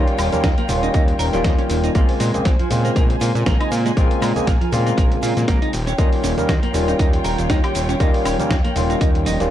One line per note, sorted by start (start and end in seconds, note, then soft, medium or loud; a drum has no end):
0.00 0.29 D#3 medium
0.00 0.29 G3 medium
0.00 0.29 A#3 medium
0.00 0.29 C#4 medium
0.00 0.29 F4 loud
0.00 1.91 F4 medium
0.00 1.91 C#5 medium
0.00 1.91 G5 medium
0.08 closed hi-hat soft
0.18 0.30 D#1 medium
0.18 0.29 C#4 medium
0.18 open hi-hat loud
0.18 cabasa medium
0.18 high woodblock medium
0.18 shaker medium
0.31 0.42 D#2 soft
0.31 0.46 D#3 medium
0.31 0.46 G3 medium
0.31 0.47 A#3 medium
0.31 0.47 C#4 medium
0.31 0.47 A#4 loud
0.31 closed hi-hat soft
0.31 high conga medium
0.31 low conga medium
0.31 cabasa soft
0.31 shaker soft
0.43 0.55 D#2 medium
0.43 0.48 D#4 medium
0.43 kick loud
0.43 snare loud
0.43 closed hi-hat medium
0.43 cabasa soft
0.43 shaker soft
0.57 0.66 A#3 medium
0.57 closed hi-hat soft
0.57 high conga medium
0.68 0.89 D#1 medium
0.68 1.30 D#3 medium
0.68 1.30 G3 medium
0.68 1.31 A#3 medium
0.68 1.31 C#4 medium
0.68 1.31 F4 loud
0.68 open hi-hat loud
0.68 low conga loud
0.68 cabasa medium
0.68 shaker loud
0.83 0.89 D#4 medium
0.83 closed hi-hat soft
0.83 cabasa soft
0.83 shaker soft
0.94 1.15 D#2 medium
0.94 1.01 D#4 loud
0.94 kick loud
0.94 closed hi-hat medium
0.94 cabasa soft
0.94 shaker soft
1.08 closed hi-hat soft
1.19 1.30 D#1 medium
1.19 1.26 A#4 loud
1.19 open hi-hat loud
1.19 cabasa medium
1.19 shaker medium
1.33 1.42 D#1 loud
1.33 1.92 D#3 medium
1.33 1.92 G3 medium
1.33 1.92 A#3 medium
1.33 1.93 C#4 medium
1.33 1.93 F4 loud
1.33 1.42 G4 medium
1.33 snare soft
1.33 closed hi-hat soft
1.33 cabasa soft
1.33 shaker medium
1.44 1.56 D#2 medium
1.44 1.52 D#4 medium
1.44 kick loud
1.44 snare loud
1.44 closed hi-hat medium
1.44 cabasa soft
1.44 shaker soft
1.59 1.62 C#4 medium
1.59 closed hi-hat soft
1.70 1.90 D#1 loud
1.70 1.77 D#3 medium
1.70 open hi-hat loud
1.70 cabasa medium
1.70 shaker medium
1.84 1.89 D#4 medium
1.84 closed hi-hat soft
1.84 cabasa soft
1.84 shaker medium
1.94 2.06 A#1 medium
1.94 2.31 C#3 medium
1.94 2.31 G#3 medium
1.94 2.06 A#3 medium
1.94 2.31 A#3 medium
1.94 2.31 C4 medium
1.94 2.31 F4 loud
1.94 3.95 C5 medium
1.94 5.70 G#5 medium
1.94 kick loud
1.94 closed hi-hat medium
1.94 cabasa soft
1.94 shaker soft
2.09 open hi-hat medium
2.20 2.31 A#2 medium
2.20 2.31 G#3 medium
2.20 open hi-hat loud
2.20 cabasa medium
2.20 shaker medium
2.34 2.43 A#1 soft
2.34 2.48 C#3 medium
2.34 2.48 G#3 medium
2.34 2.48 A#3 medium
2.34 2.48 C4 medium
2.34 2.48 G#4 medium
2.34 closed hi-hat soft
2.34 high conga medium
2.34 low conga medium
2.34 cabasa soft
2.34 shaker medium
2.45 2.57 A#1 medium
2.45 2.50 A#3 medium
2.45 kick loud
2.45 snare loud
2.45 closed hi-hat medium
2.45 cabasa soft
2.45 shaker soft
2.59 2.68 F3 medium
2.59 closed hi-hat soft
2.59 high conga medium
2.69 2.91 A#2 medium
2.69 3.93 C#3 medium
2.69 3.94 G#3 medium
2.69 3.94 A#3 medium
2.69 3.94 C4 medium
2.69 3.95 F4 loud
2.69 open hi-hat loud
2.69 low conga medium
2.69 cabasa medium
2.69 shaker medium
2.84 2.90 A#3 medium
2.84 closed hi-hat soft
2.84 cabasa soft
2.84 shaker soft
2.95 3.16 A#1 medium
2.95 3.03 A#3 loud
2.95 kick loud
2.95 closed hi-hat medium
2.95 cabasa soft
2.95 shaker soft
3.10 closed hi-hat soft
3.20 3.32 A#2 medium
3.20 3.32 F4 medium
3.20 open hi-hat loud
3.20 cabasa medium
3.20 shaker medium
3.35 3.44 A#2 loud
3.35 closed hi-hat soft
3.35 cabasa soft
3.35 shaker soft
3.46 3.57 A#1 medium
3.46 3.57 A#3 loud
3.46 kick loud
3.46 snare loud
3.46 closed hi-hat medium
3.46 cabasa soft
3.46 shaker soft
3.60 3.69 D#4 loud
3.60 closed hi-hat soft
3.60 high woodblock medium
3.71 3.92 A#2 loud
3.71 open hi-hat loud
3.71 cabasa medium
3.71 shaker medium
3.85 3.91 G#3 loud
3.85 closed hi-hat soft
3.85 cabasa soft
3.85 shaker medium
3.96 4.08 A#1 medium
3.96 4.32 C#3 loud
3.96 4.33 G#3 medium
3.96 4.07 A#3 medium
3.96 4.33 A#3 medium
3.96 4.33 C4 medium
3.96 4.33 F4 loud
3.96 5.72 A#4 medium
3.96 kick loud
3.96 closed hi-hat medium
3.96 cabasa soft
3.96 shaker soft
4.11 closed hi-hat soft
4.22 4.33 A#2 medium
4.22 4.32 G#3 medium
4.22 open hi-hat loud
4.22 cabasa medium
4.22 high woodblock medium
4.22 shaker medium
4.35 4.45 A#1 soft
4.35 4.50 C#3 medium
4.35 4.50 G#3 medium
4.35 4.50 A#3 medium
4.35 4.50 C4 medium
4.35 4.50 G#4 loud
4.35 closed hi-hat soft
4.35 high conga medium
4.35 low conga medium
4.35 cabasa soft
4.35 shaker medium
4.46 4.58 A#1 medium
4.46 4.51 A#3 medium
4.46 kick loud
4.46 snare loud
4.46 closed hi-hat medium
4.46 cabasa soft
4.46 shaker soft
4.61 4.69 F3 medium
4.61 closed hi-hat soft
4.61 high conga medium
4.72 4.93 A#2 medium
4.72 5.71 C#3 medium
4.72 5.72 G#3 medium
4.72 5.72 A#3 medium
4.72 5.72 C4 medium
4.72 5.72 F4 loud
4.72 open hi-hat loud
4.72 low conga medium
4.72 cabasa medium
4.72 shaker medium
4.86 4.92 A#3 medium
4.86 closed hi-hat soft
4.86 cabasa soft
4.86 shaker soft
4.97 5.18 A#1 medium
4.97 5.04 A#3 loud
4.97 kick loud
4.97 closed hi-hat medium
4.97 cabasa soft
4.97 shaker soft
5.12 closed hi-hat soft
5.22 5.34 A#2 medium
5.22 5.33 F4 medium
5.22 open hi-hat loud
5.22 cabasa medium
5.22 shaker medium
5.36 5.46 A#2 loud
5.36 snare soft
5.36 closed hi-hat soft
5.36 cabasa soft
5.36 shaker soft
5.48 5.59 A#1 medium
5.48 5.58 A#3 loud
5.48 kick medium
5.48 snare loud
5.48 closed hi-hat medium
5.48 cabasa soft
5.48 shaker soft
5.62 5.70 D#4 loud
5.62 closed hi-hat soft
5.73 5.94 D#1 loud
5.73 9.51 F4 medium
5.73 9.51 C#5 medium
5.73 9.51 G5 medium
5.73 open hi-hat loud
5.73 cabasa medium
5.73 shaker medium
5.87 5.93 C#4 loud
5.87 closed hi-hat soft
5.87 cabasa soft
5.87 shaker medium
5.98 6.09 D#2 medium
5.98 6.34 D#3 loud
5.98 6.34 G3 medium
5.98 6.34 A#3 medium
5.98 6.35 C#4 medium
5.98 6.09 D#4 medium
5.98 6.35 F4 loud
5.98 kick loud
5.98 closed hi-hat medium
5.98 cabasa soft
5.98 shaker soft
6.13 open hi-hat medium
6.24 6.35 D#1 medium
6.24 6.34 C#4 medium
6.24 open hi-hat loud
6.24 cabasa medium
6.24 shaker loud
6.37 6.47 D#2 soft
6.37 6.51 D#3 medium
6.37 6.51 G3 medium
6.37 6.52 A#3 medium
6.37 6.52 C#4 medium
6.37 6.52 A#4 medium
6.37 closed hi-hat soft
6.37 high conga soft
6.37 low conga medium
6.37 cabasa soft
6.37 shaker soft
6.49 6.60 D#2 medium
6.49 6.53 D#4 medium
6.49 kick loud
6.49 snare loud
6.49 closed hi-hat medium
6.49 cabasa soft
6.49 shaker soft
6.63 6.71 A#3 medium
6.63 closed hi-hat soft
6.63 high conga medium
6.73 6.94 D#1 medium
6.73 7.97 D#3 loud
6.73 7.97 G3 medium
6.73 7.97 A#3 medium
6.73 7.98 C#4 medium
6.73 7.98 F4 loud
6.73 open hi-hat loud
6.73 low conga medium
6.73 cabasa medium
6.73 shaker loud
6.87 6.94 D#4 medium
6.87 closed hi-hat soft
6.87 cabasa soft
6.87 shaker medium
6.99 7.20 D#2 medium
6.99 7.06 D#4 loud
6.99 kick loud
6.99 closed hi-hat medium
6.99 cabasa soft
6.99 shaker soft
7.13 closed hi-hat soft
7.24 7.36 D#1 medium
7.24 7.35 A#4 medium
7.24 open hi-hat loud
7.24 cabasa medium
7.24 shaker medium
7.38 7.47 D#1 medium
7.38 closed hi-hat soft
7.38 cabasa soft
7.38 shaker medium
7.50 7.61 D#2 medium
7.50 7.60 D#4 loud
7.50 kick loud
7.50 snare loud
7.50 closed hi-hat medium
7.50 cabasa soft
7.50 shaker soft
7.64 7.72 G4 loud
7.64 closed hi-hat soft
7.64 high woodblock medium
7.75 7.95 D#1 loud
7.75 open hi-hat loud
7.75 cabasa medium
7.75 shaker loud
7.89 7.94 C#4 loud
7.89 closed hi-hat soft
7.89 cabasa soft
7.89 shaker medium
8.00 8.11 D#2 medium
8.00 8.36 D#3 medium
8.00 8.36 G3 medium
8.00 8.36 A#3 medium
8.00 8.36 C#4 medium
8.00 8.11 D#4 medium
8.00 8.36 F4 loud
8.00 kick loud
8.00 closed hi-hat medium
8.00 cabasa soft
8.00 shaker soft
8.14 open hi-hat medium
8.25 8.36 D#1 loud
8.25 8.36 C#4 medium
8.25 open hi-hat loud
8.25 cabasa medium
8.25 high woodblock medium
8.25 shaker medium
8.39 8.48 D#2 soft
8.39 8.53 D#3 medium
8.39 8.53 G3 medium
8.39 8.53 A#3 medium
8.39 8.54 C#4 medium
8.39 8.54 A#4 loud
8.39 closed hi-hat soft
8.39 high conga medium
8.39 low conga medium
8.39 cabasa soft
8.39 shaker medium
8.49 8.62 D#2 medium
8.49 8.55 D#4 medium
8.49 kick loud
8.49 snare loud
8.49 closed hi-hat medium
8.49 cabasa soft
8.49 shaker soft
8.64 8.73 A#3 medium
8.64 closed hi-hat soft
8.64 high conga medium
8.75 8.96 D#1 medium
8.75 9.37 D#3 loud
8.75 9.37 G3 medium
8.75 9.38 A#3 medium
8.75 9.38 C#4 medium
8.75 9.38 F4 loud
8.75 open hi-hat loud
8.75 low conga medium
8.75 cabasa medium
8.75 shaker medium
8.90 8.95 D#4 medium
8.90 closed hi-hat soft
8.90 cabasa soft
8.90 shaker medium
9.01 9.28 D#2 medium
9.01 9.08 D#4 loud
9.01 kick loud
9.01 closed hi-hat medium
9.01 cabasa soft
9.01 shaker soft
9.15 closed hi-hat soft
9.26 9.37 D#1 medium
9.26 9.37 D#4 loud
9.26 open hi-hat loud
9.26 high conga medium
9.26 cabasa medium
9.26 shaker medium
9.39 9.49 D#1 loud
9.39 9.51 D#3 medium
9.39 9.51 G3 medium
9.39 9.51 A#3 medium
9.39 9.51 C#4 medium
9.39 9.51 F4 medium
9.39 snare soft
9.39 closed hi-hat soft
9.39 cabasa soft
9.39 shaker medium